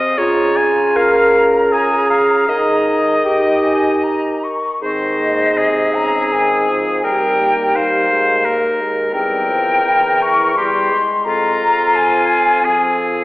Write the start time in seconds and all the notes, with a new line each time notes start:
Already playing: C4 D#5
0.17 C#3 F4 C#5 A#5
0.57 G#5
0.95 A#4 F5
1.72 G#4 G#5
2.10 F5
2.48 D#3 D#4 G#4 D#5
3.24 G4 G5
3.63 G#5
4.03 A#5
4.44 C#6
4.81 G#2 D#3 C4 C5 D#5
5.19 A#3
5.57 C3 C4 G#4
5.94 C#3 A#5
6.32 D#3 G#5
6.69 F3
6.99 G#5
7.04 D#2 G3 C4 A#4 G5
7.40 A#3
7.75 G3 D#4 C5 F5
8.11 G#3
8.46 A#3 A#4
8.80 G#3
9.12 E2 G3 C4 A#4 G5
9.50 F3
9.84 E3 E4
10.22 C#6
10.55 G3 E4 G4 C6
10.91 G#3
11.24 F2 C4 F4 A#5
11.95 F3 G#5
12.63 F3 C4 G#4